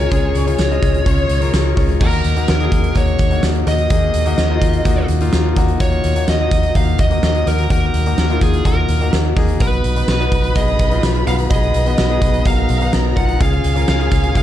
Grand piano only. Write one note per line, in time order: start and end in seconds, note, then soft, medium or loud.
0.00 0.11 C#3 medium
0.00 0.11 G#3 medium
0.00 0.11 C#4 medium
0.00 0.12 F4 medium
0.00 0.12 G#4 medium
0.00 1.42 A#4 loud
0.00 0.48 C#5 medium
0.11 0.78 C#3 medium
0.11 0.42 G#3 medium
0.11 0.42 C#4 medium
0.11 0.42 F4 medium
0.11 0.43 G#4 loud
0.46 0.67 G#3 medium
0.46 0.68 C#4 medium
0.46 0.68 F4 medium
0.46 0.68 C#5 loud
0.70 1.01 G#3 medium
0.70 1.02 C#4 medium
0.70 1.02 F4 medium
0.70 1.02 D#5 loud
1.06 1.37 G#3 medium
1.06 1.37 C#4 medium
1.06 1.37 F4 medium
1.06 1.38 C#5 loud
1.41 1.72 G#3 medium
1.41 1.72 C#4 medium
1.41 1.73 F4 medium
1.41 1.73 A#4 medium
1.76 1.97 G#3 medium
1.76 1.98 C#4 medium
1.76 1.98 F4 medium
1.76 1.98 C#5 loud
2.00 2.68 D#3 medium
2.00 2.31 A#3 medium
2.00 2.32 D#4 medium
2.00 2.32 F#4 medium
2.36 2.57 A#3 medium
2.36 2.57 D#4 medium
2.36 2.57 F#4 medium
2.60 2.91 A#3 medium
2.60 2.91 D#4 medium
2.60 2.91 G#4 medium
2.95 3.26 A#3 medium
2.95 3.27 D#4 medium
2.95 3.27 F#4 medium
3.30 3.62 A#3 medium
3.30 3.62 D#4 medium
3.30 3.63 F#4 medium
3.66 3.87 A#3 medium
3.66 3.88 D#4 medium
3.66 3.88 F#4 medium
3.90 4.58 D#3 medium
3.90 4.21 A#3 medium
3.90 4.22 D#4 medium
3.90 4.22 G#4 medium
4.25 4.46 A#3 medium
4.25 4.47 D#4 medium
4.25 4.47 F#4 loud
4.49 4.81 A#3 medium
4.49 4.81 D#4 medium
4.49 4.81 F4 loud
4.85 5.16 A#3 medium
4.85 5.16 D#4 medium
4.85 5.17 F#4 loud
5.20 5.52 A#3 medium
5.20 5.52 D#4 medium
5.20 5.52 F4 loud
5.56 5.77 A#3 medium
5.56 5.77 D#4 medium
5.56 5.78 F#4 loud
5.80 6.48 D#3 medium
5.80 6.11 A#3 medium
5.80 6.11 D#4 medium
5.80 6.12 F4 medium
6.15 6.36 A#3 medium
6.15 6.37 D#4 medium
6.15 6.37 F#4 medium
6.39 6.70 A#3 medium
6.39 6.71 D#4 medium
6.39 6.71 F#4 medium
6.75 7.06 A#3 medium
6.75 7.06 D#4 medium
6.75 7.07 F#4 medium
7.10 7.41 A#3 medium
7.10 7.42 D#4 medium
7.10 7.42 F#4 medium
7.46 7.67 A#3 medium
7.46 7.67 D#4 medium
7.46 7.67 F#4 medium
7.70 8.37 D#3 medium
7.70 8.01 A#3 medium
7.70 8.01 D#4 medium
7.70 8.02 F#4 medium
8.06 8.27 A#3 medium
8.06 8.27 D#4 medium
8.06 8.27 F#4 medium
8.29 8.60 A#3 medium
8.29 8.61 D#4 medium
8.29 8.61 F4 medium
8.65 8.96 A#3 medium
8.65 8.96 D#4 medium
8.65 8.97 F#4 medium
9.00 9.32 A#3 medium
9.00 9.32 D#4 medium
9.00 9.32 F#4 medium
9.36 9.57 A#3 medium
9.36 9.57 D#4 medium
9.36 9.58 G#4 medium
9.60 10.28 B2 medium
9.60 9.91 B3 medium
9.60 9.92 D#4 medium
9.60 9.92 F#4 medium
9.96 10.17 B3 medium
9.96 10.17 D#4 medium
9.96 10.17 F#4 medium
10.19 10.51 B3 medium
10.19 10.51 D#4 medium
10.19 10.51 F#4 medium
10.55 10.86 B3 medium
10.55 10.87 D#4 medium
10.55 10.87 G#4 medium
10.91 11.22 B3 medium
10.91 11.22 D#4 medium
10.91 11.23 F4 medium
11.27 11.47 B3 medium
11.27 11.48 D#4 medium
11.27 11.48 F#4 medium
11.50 12.18 B2 medium
11.50 11.81 B3 medium
11.50 11.82 D#4 medium
11.50 11.82 G#4 medium
11.86 12.07 B3 medium
11.86 12.07 D#4 medium
11.86 12.07 F#4 medium
12.09 12.40 B3 medium
12.09 12.41 D#4 medium
12.09 12.41 G#4 medium
12.45 12.76 B3 medium
12.45 12.77 D#4 medium
12.45 12.77 F#4 medium
12.81 13.12 B3 medium
12.81 13.12 D#4 medium
12.81 13.13 F#4 medium
13.16 13.37 B3 medium
13.16 13.38 D#4 medium
13.16 13.38 F4 medium
13.40 14.08 C#3 medium
13.40 13.71 C#4 medium
13.40 13.72 F4 medium
13.40 13.72 G#4 medium
13.76 13.97 C#4 medium
13.76 13.97 F4 medium
13.76 13.97 A#4 medium
13.99 14.31 C#4 medium
13.99 14.31 F4 medium
13.99 14.31 G#4 medium
14.35 14.43 C#4 medium
14.35 14.43 F4 medium
14.35 14.43 G#4 medium